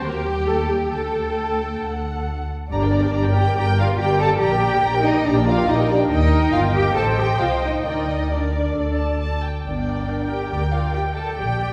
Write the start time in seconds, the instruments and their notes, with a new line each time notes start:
0.04 double bass section D#2, cello section A#3, violin section G4 G5, viola section A#4
0.26 cello section G3, viola section G4
0.47 cello section A3, viola section A4
0.69 cello section G3, viola section G4
0.91 double bass section D2, cello section A3, viola section A4, violin section A4 G5
1.82 double bass section D2, violin section F#5
2.71 double bass section G1, cello section D4, viola section G4 D5, violin section D5 A#5
2.82 viola section A#4, violin section G5
2.92 viola section G4 D5, violin section A#5
3.03 viola section A#4, violin section G5
3.14 double bass section G1, viola section G4 D5, violin section A#5
3.24 viola section A#4, violin section G5
3.35 viola section G4 D5, cello section G4, violin section G5 A#5
3.46 viola section A#4, violin section G5
3.56 double bass section G1, viola section G4 D5, cello section G4, violin section G5 A#5
3.66 viola section A#4, violin section G5
3.78 cello section F4, viola section G4 D5, violin section F5 A#5
3.88 viola section A#4, violin section G5
3.98 double bass section G1, viola section G4 D5, cello section G4, violin section G5 A#5
4.08 viola section A#4, violin section G5
4.19 viola section G4 D5, cello section A4, violin section A5 A#5
4.30 viola section A#4, violin section G5
4.40 double bass section A#1, viola section G4 D5, cello section G4, violin section G5 A#5
4.51 viola section A#4, violin section G5
4.62 viola section G4 D5, violin section A#5
4.73 viola section A#4, violin section G5
4.82 double bass section A#1, viola section G4 D5, violin section A#5
4.94 viola section A#4, violin section G5
5.05 cello section D#4, viola section G4 D5, violin section D#5 A#5
5.15 viola section A#4, violin section G5
5.25 double bass section A#1, cello section D4, viola section G4 D5, violin section D5 A#5
5.35 viola section A#4, violin section G5
5.46 cello section F4, viola section G4 D5, violin section F5 A#5
5.56 viola section A#4, violin section G5
5.68 double bass section A#1, cello section D#4, viola section G4 D5, violin section D#5 A#5
5.78 viola section A#4, violin section G5
5.89 cello section D4, viola section G4 D5, violin section D5 A#5
6.00 viola section A#4, violin section G5
6.11 double bass section D#2, cello section D#4, viola section A#4 D#5, violin section D#5 G5
6.53 double bass section G1, cello section F4, violin section F5
6.75 cello section G4, violin section G5
6.96 double bass section A1, cello section A4, viola section C5 D#5, violin section G5 A5
7.18 cello section G4, violin section G5
7.40 double bass section C2, cello section F4, violin section F5
7.62 cello section D#4, violin section D#5
7.85 double bass section D2, cello section D#4, viola section A#4 D5, violin section D#5 G5
8.31 cello section D4, viola section A#4 D5, violin section D5
8.77 double bass section D2, viola section A4 D5
8.98 violin section A5
9.21 violin section A5
9.43 violin section G5
9.66 double bass section G1, cello section D4, viola section A#4 D5, violin section D5 G5
9.77 viola section G5
9.88 viola section D5
9.99 viola section G5
10.10 viola section D5
10.21 viola section G5
10.30 cello section G4, viola section D5, violin section G5
10.42 viola section G5
10.50 double bass section D2, cello section G4, viola section D5, violin section G5
10.64 viola section G5
10.72 cello section F4, viola section D5, violin section F5
10.85 viola section G5
10.94 cello section G4, viola section D5, violin section G5
11.06 viola section G5
11.16 cello section A4, viola section D5, violin section A5
11.27 viola section G5
11.37 double bass section A#1, cello section G4, viola section D5, violin section G5
11.49 viola section G5
11.59 viola section D5